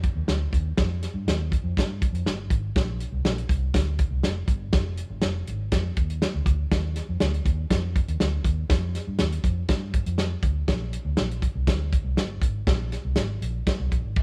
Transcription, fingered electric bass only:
0.15 0.25 D#2 medium
0.27 0.46 D2 medium
0.52 0.71 D#2 medium
0.78 1.05 F2 medium
1.14 1.23 G2 medium
1.27 1.55 D#2 medium
1.64 1.73 F2 medium
1.77 2.04 G2 medium
2.13 2.22 F2 medium
2.25 2.44 G1 medium
2.50 2.69 G#1 medium
2.76 3.03 A#1 medium
3.12 3.22 C2 medium
3.25 3.43 A#1 medium
3.49 3.68 C2 medium
3.74 4.02 D2 medium
4.11 4.20 C2 medium
4.24 4.42 F1 medium
4.48 4.66 G1 medium
4.73 5.01 F1 medium
5.10 5.19 G1 medium
5.23 5.42 F1 medium
5.48 5.66 G#1 medium
5.72 5.90 F2 medium
5.97 6.25 D#2 medium
6.34 6.44 D2 medium
6.45 6.64 D2 medium
6.71 6.99 D#2 medium
7.09 7.18 F2 medium
7.21 7.39 D2 medium
7.45 7.64 D#2 medium
7.70 7.98 F2 medium
8.08 8.17 D#2 medium
8.21 8.39 D2 medium
8.44 8.63 D#2 medium
8.69 8.97 F2 loud
9.07 9.16 G2 medium
9.20 9.38 D#2 medium
9.44 9.62 F2 medium
9.69 9.96 G2 medium
10.06 10.34 F2 medium
10.42 10.61 D2 medium
10.68 10.96 A#1 medium
11.05 11.14 D2 medium
11.18 11.46 A#1 medium
11.55 11.65 C2 medium
11.67 11.95 D2 medium
12.04 12.14 C2 medium
12.17 12.36 G1 medium
12.41 12.60 G#1 medium
12.67 12.95 A#1 loud
13.05 13.14 C2 medium
13.16 13.35 G#1 medium
13.41 13.60 A#1 medium
13.80 13.89 C2 medium
13.92 14.01 A#1 medium
14.05 14.14 G#1 medium

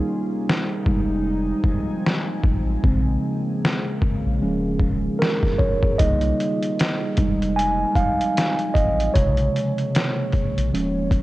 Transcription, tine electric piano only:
0.00 0.82 G3 medium
0.00 0.82 A#3 soft
0.00 0.83 D#4 medium
0.86 2.00 G3 medium
0.86 2.01 G#3 soft
0.86 2.01 D#4 medium
2.83 3.98 C#3 medium
2.83 3.98 G#3 soft
2.83 3.98 C4 medium
4.41 4.96 F3 medium
4.41 4.96 G#3 soft
4.41 4.97 C#4 medium
5.19 5.60 A#4 medium
5.58 6.00 C#5 medium
5.98 7.14 G3 medium
5.98 7.14 A#3 medium
5.98 7.14 D#4 medium
5.98 7.53 D#5 loud
7.17 8.32 G3 medium
7.17 8.32 G#3 soft
7.17 8.33 D#4 medium
7.56 7.93 G#5 loud
7.96 8.77 F5 loud
8.74 9.15 D#5 loud
9.14 10.69 C3 medium
9.14 10.69 C#3 medium
9.14 10.69 G#3 soft
9.14 11.22 C#5 loud
10.73 11.22 F3 medium
10.73 11.22 G#3 soft
10.73 11.22 C#4 medium

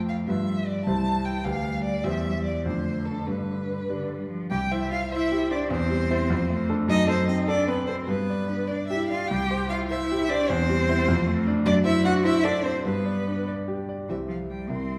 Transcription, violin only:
0.09 0.17 F5 medium
0.27 0.68 E5 medium
0.67 0.84 D5 medium
0.85 1.26 A5 loud
1.25 1.46 G5 medium
1.44 1.83 F5 medium
1.83 2.05 D5 medium
2.04 2.43 E5 medium
2.44 2.64 D5 medium
2.65 3.07 C5 medium
3.05 3.27 A4 medium
3.26 4.30 B4 medium
4.51 4.73 G5 loud
4.71 4.90 E5 medium
4.91 5.10 F5 medium
5.11 5.50 E5 medium
5.51 5.59 D5 loud
5.71 6.67 C5 loud
6.89 7.08 D#5 loud
7.09 7.28 C5 loud
7.28 7.36 D#5 loud
7.48 7.67 D5 loud
7.68 7.86 B4 medium
7.87 7.95 C5 medium
8.07 8.69 B4 loud
8.67 8.86 D5 medium
8.87 9.08 E5 medium
9.08 9.29 F5 medium
9.27 9.69 G5 loud
9.69 9.77 F5 medium
9.89 10.31 E5 loud
10.30 10.51 D5 loud
10.49 11.46 C5 loud
11.66 11.73 D5 loud
11.85 12.04 E5 loud
12.05 12.12 F#5 loud
12.25 12.45 E5 loud
12.43 12.65 D5 loud
12.64 12.84 C5 loud
12.84 13.46 B4 medium
14.09 14.17 E5 medium
14.30 14.38 F5 soft
14.50 14.69 G5 soft
14.70 14.98 C6 medium

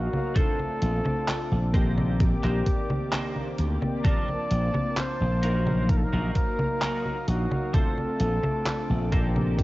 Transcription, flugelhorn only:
0.00 0.38 F#4 medium
0.36 1.94 A4 loud
2.21 3.55 G4 medium
4.05 4.99 D5 loud
4.98 5.91 C5 loud
5.90 5.98 A#4 loud
5.97 6.06 A4 medium
6.04 6.35 A#4 loud
6.36 7.30 A#4 loud
7.28 7.76 F#4 medium
7.74 9.32 A4 loud
9.59 9.63 G4 medium

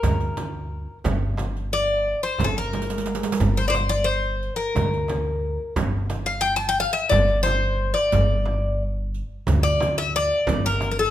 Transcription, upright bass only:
0.03 0.84 D2 medium
1.05 2.12 G1 medium
2.40 3.21 G1 medium
3.41 4.48 G1 medium
4.75 5.56 D2 medium
5.77 6.84 G1 loud
7.12 7.92 G1 medium
8.13 9.20 G1 loud
9.48 10.28 D2 medium
10.48 11.10 G1 loud

